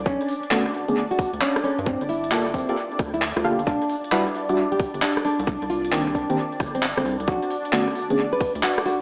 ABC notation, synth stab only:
X:1
M:4/4
L:1/16
Q:"Swing 16ths" 1/4=133
K:Bphr
V:1 name="Synth stab"
z4 [D,A,B,^CF] z2 [D,A,B,C^G] z8 | z4 [_B,=FGAd] z2 [B,FGAd] z6 [B,FGA=f] z | z4 [G,DEFB] z2 [G,DEFd] z8 | z4 [_E,_B,CDG] z2 [E,B,CDG] z8 |
z4 [D,A,B,^CF] z2 [D,A,B,C^G] z8 |]